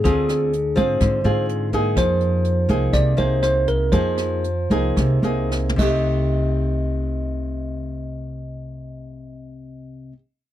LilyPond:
<<
  \new Staff \with { instrumentName = "Tine electric piano" } { \time 4/4 \key c \minor \tempo 4 = 113 aes'4. c''4. r4 | c''2 d''8 c''8 c''8 bes'8 | c''2.~ c''8 ees''8~ | ees''1~ |
ees''1 | }
  \new Staff \with { instrumentName = "Nylon-string guitar" } { \time 4/4 \key c \minor << { <c' f' aes'>4 r8 <c' f' aes'>4 <c' f' aes'>4 <bes ees' aes'>8~ | <bes ees' aes'>4. <bes ees' aes'>4 <bes ees' aes'>4. | <bes ees' aes'>4 r8 <bes ees' aes'>4 <bes ees' aes'>4 <c a ees' g'>8~ | <c a ees' g'>1~ |
<c a ees' g'>1 | } \\ { d2 d2 | f2 c2 | f2 c4. r8 | r1 |
r1 | } >> }
  \new Staff \with { instrumentName = "Upright bass" } { \clef bass \time 4/4 \key c \minor d,4. aes,8 aes,8 aes,4. | f,4. c,8 c,8 c,4. | f,4. c,8 c,8 c,4 c,8~ | c,1~ |
c,1 | }
  \new DrumStaff \with { instrumentName = "Drums" } \drummode { \time 4/4 <hh bd>8 <hh ss>8 hh8 <hh bd>8 <hh bd ss>8 hh8 hh8 <hh bd>8 | <hh bd ss>8 hh8 hh8 <hh bd>8 <hh bd ss>8 hh8 <hh ss>8 <hh bd>8 | <hh bd>8 <hh ss>8 hh8 <hh bd>8 <hh bd ss>8 hh8 \tuplet 3/2 { sn16 r16 toml16 <cymc bd>16 r16 r16 } | r4 r4 r4 r4 |
r4 r4 r4 r4 | }
>>